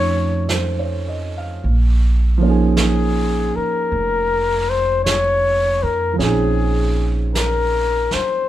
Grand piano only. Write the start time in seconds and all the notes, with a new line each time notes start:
Already playing: F3 A3 C#4 D#4 A4
0.52 C5
0.79 C#5
1.08 D#5
1.37 F5
2.38 F3 A#3
2.43 C#4 D#4
2.50 G#4
6.13 F3 C4
6.19 C#4 D#4
6.25 G#4